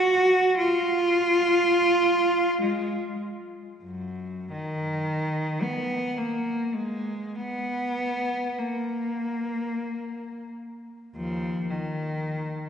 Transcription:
0.00 0.59 F#4 loud
0.57 2.57 F4 loud
2.62 3.18 G#3 medium
3.84 4.51 F#2 medium
4.52 5.62 D#3 medium
5.63 6.18 B3 medium
6.18 6.75 A#3 medium
6.74 7.35 G#3 medium
7.35 8.59 B3 medium
8.59 10.49 A#3 medium
11.16 11.67 D#2 medium
11.16 11.67 F3 medium
11.70 12.69 D#3 medium

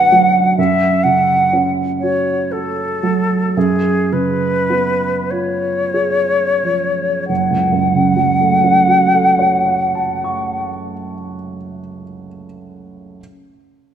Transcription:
0.00 0.54 F#2 soft
0.00 0.60 D3 soft
0.00 0.60 D4 soft
0.00 0.60 F#4 soft
0.00 0.39 B4 soft
0.00 0.57 F#5 medium
0.12 0.58 F#3 soft
0.58 3.52 F#2 soft
0.58 1.05 E5 medium
1.03 1.82 C#3 soft
1.03 1.71 F#5 medium
1.53 2.31 C#4 soft
2.00 2.82 F#4 soft
2.00 2.53 C#5 medium
2.52 3.59 A4 medium
2.52 3.35 A4 soft
3.03 3.56 F#3 soft
3.57 7.26 F#2 soft
3.57 4.14 G#4 medium
4.12 5.05 C#3 soft
4.12 5.32 B4 medium
4.70 5.67 B3 soft
5.31 6.35 F4 soft
5.31 7.28 C#5 soft
5.94 7.04 G#4 soft
6.64 7.30 F3 soft
7.28 10.69 F#1 soft
7.28 10.68 F#5 soft
7.51 10.91 C#2 soft
7.72 11.12 F#2 soft
7.94 11.34 C#3 soft
8.16 11.56 F#3 soft
8.40 11.80 A3 soft
8.64 12.04 C#4 soft
8.87 12.27 F#4 soft
9.14 12.45 A4 soft
9.39 12.44 C#5 soft
9.66 12.44 F#5 soft
9.95 12.45 A5 soft
10.24 12.45 C#6 soft

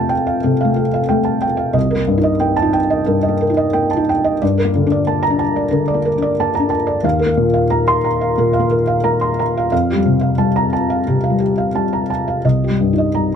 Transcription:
0.00 0.39 F2 medium
0.00 0.44 C3 medium
0.00 0.65 A3 medium
0.00 0.44 A4 medium
0.00 0.27 F5 medium
0.00 0.09 G5 medium
0.00 0.10 A5 medium
0.09 0.36 G5 medium
0.27 0.53 F5 soft
0.44 0.79 C3 medium
0.44 0.70 A4 medium
0.61 1.00 A3 medium
0.61 0.87 F5 medium
0.76 1.03 A4 medium
0.94 1.20 F5 medium
1.09 1.45 A3 medium
1.09 1.35 G5 medium
1.24 1.42 A5 soft
1.42 1.68 G5 medium
1.57 1.74 F5 medium
1.73 3.04 C2 medium
1.73 2.01 D#5 medium
1.91 2.18 A#4 medium
1.95 2.32 A#3 medium
2.07 2.34 G2 medium
2.18 2.54 D#4 medium
2.23 2.51 D#5 medium
2.40 2.77 A#3 medium
2.40 2.68 G5 medium
2.56 2.74 A5 medium
2.62 2.99 D#4 medium
2.73 3.01 G5 medium
2.90 3.18 D#5 medium
3.06 3.43 G2 medium
3.06 3.34 A#4 medium
3.23 3.51 D#5 medium
3.28 3.65 A#3 medium
3.41 3.68 A#4 medium
3.50 3.87 D#4 medium
3.57 3.85 D#5 medium
3.73 4.10 A#3 medium
3.73 4.01 G5 medium
3.91 4.08 A5 soft
3.97 4.32 D#4 medium
4.09 4.36 G5 medium
4.24 4.41 D#5 medium
4.42 5.69 G2 medium
4.42 4.68 D5 medium
4.58 4.84 A#4 medium
4.65 4.99 A#3 medium
4.75 5.01 D3 medium
4.87 5.21 D4 medium
4.92 5.18 D5 medium
5.07 5.42 A#3 medium
5.07 5.33 A5 medium
5.23 5.39 A#5 medium
5.30 5.64 D4 medium
5.39 5.65 A5 medium
5.56 5.82 D5 medium
5.71 6.07 D3 medium
5.71 5.98 A#4 medium
5.88 6.14 D5 medium
5.94 6.29 A#3 medium
6.05 6.31 A#4 medium
6.18 6.52 D4 medium
6.22 6.48 D5 medium
6.40 6.74 A#3 medium
6.40 6.65 A5 medium
6.55 6.71 A#5 medium
6.60 6.95 D4 medium
6.70 6.97 A5 medium
6.87 7.04 D5 medium
7.04 8.34 D#2 medium
7.04 7.31 F5 medium
7.19 7.46 A#4 medium
7.26 7.62 A#3 medium
7.37 7.64 A#2 medium
7.54 7.81 F5 medium
7.70 8.07 A#3 medium
7.70 7.98 A#5 medium
7.88 8.05 C6 medium
8.04 8.31 A#5 medium
8.21 8.48 F5 medium
8.38 8.73 A#2 medium
8.38 8.65 A#4 medium
8.53 8.81 F5 medium
8.59 8.95 A#3 medium
8.71 8.98 A#4 medium
8.87 9.14 F5 medium
9.04 9.40 A#3 medium
9.04 9.31 A#5 medium
9.21 9.38 C6 soft
9.39 9.65 A#5 medium
9.57 9.71 F5 medium
9.72 11.01 F2 medium
9.72 9.98 F5 medium
9.90 10.16 G4 medium
9.95 10.30 G3 medium
10.06 10.32 C3 medium
10.21 10.48 F5 medium
10.38 10.73 G3 soft
10.38 10.65 A5 medium
10.56 10.72 A#5 medium
10.73 10.99 A5 medium
10.90 11.16 F5 medium
11.08 11.42 C3 soft
11.08 11.33 G4 medium
11.24 11.50 F5 medium
11.30 11.65 G3 soft
11.40 11.67 G4 soft
11.58 11.85 F5 soft
11.75 12.11 G3 soft
11.75 12.02 A5 medium
11.93 12.09 A#5 soft
12.10 12.38 A5 soft
12.28 12.45 F5 soft
12.45 13.35 C2 soft
12.45 12.73 D#5 soft
12.64 12.92 G4 soft
12.70 13.07 G3 soft
12.80 13.09 G2 soft
12.93 13.30 D#4 soft
12.98 13.26 D#5 soft
13.15 13.35 G3 soft
13.15 13.35 A#5 soft

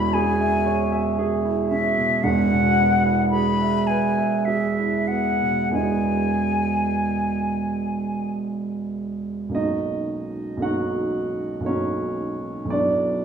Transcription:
0.00 2.20 E1 medium
0.00 2.20 E2 medium
0.00 1.98 B2 medium
0.00 1.71 C#4 medium
0.00 0.30 E4 medium
0.00 0.15 B5 loud
0.13 0.55 G#4 medium
0.13 1.17 G#5 loud
0.41 0.81 E5 medium
0.66 1.07 C#5 medium
0.92 1.34 E5 medium
1.19 1.60 G#4 medium
1.45 1.87 E4 medium
1.69 2.14 C#4 medium
1.69 2.25 E5 medium
1.98 2.24 B2 medium
2.24 5.70 E1 medium
2.24 5.68 E2 medium
2.24 3.30 F#5 loud
2.52 2.95 B2 medium
2.79 3.23 B3 medium
3.05 3.50 E4 medium
3.30 3.78 G#4 medium
3.30 3.88 B5 loud
3.61 4.07 E5 medium
3.87 4.37 B4 medium
3.87 4.46 G#5 medium
4.18 4.66 E5 medium
4.45 4.97 G#4 medium
4.45 5.09 E5 medium
4.79 5.29 E4 soft
5.08 5.61 B3 soft
5.08 5.73 F#5 medium
5.42 5.75 B2 soft
5.70 9.48 E2 medium
5.70 9.49 B3 soft
5.70 9.49 E4 soft
5.70 9.50 G#4 soft
5.70 8.30 G#5 medium
5.74 9.50 E1 medium
5.74 9.50 D#5 soft
9.49 10.55 B1 soft
9.49 10.57 A#3 soft
9.49 10.58 C#4 soft
9.54 10.59 D#4 medium
9.54 10.59 F#4 soft
9.54 10.62 D#5 medium
10.57 11.59 B1 soft
10.57 11.60 A#3 soft
10.57 11.61 C#4 soft
10.61 11.62 D#4 soft
10.61 11.63 F#4 medium
10.61 11.66 F#5 medium
11.61 12.63 B1 soft
11.61 12.65 A#3 soft
11.61 12.67 D#4 soft
11.66 12.67 C#4 medium
11.66 12.67 F#4 soft
11.66 12.71 C#5 medium
12.65 13.25 B1 soft
12.65 13.25 F#3 soft
12.65 13.25 B3 soft
12.70 13.25 D4 medium
12.70 13.25 E4 soft
12.70 13.25 D5 medium

